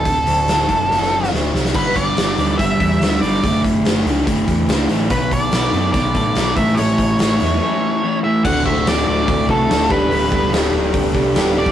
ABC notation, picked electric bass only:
X:1
M:4/4
L:1/8
Q:1/4=144
K:Dmix
V:1 name="Picked electric bass" clef=bass
D,,, D,,,2 F,,, F,,,2 D,,, C,, | [K:Amix] G,,, G,,, G,,, D,, G,,, E,, D,, G,,, | F,,, F,,, F,,, C,, F,,, E,, C,, A,,, | B,,, B,,, B,,, F,, B,,, A,, B,,, A,,, |
A,,, A,,, A,,, E,, z4 | [K:Dmix] D,,, D,,, D,,, D,,, D,,, C,, D,,, D,,, | D,,, D,,, D,,, D,,, D,,, C,, D,,,2 |]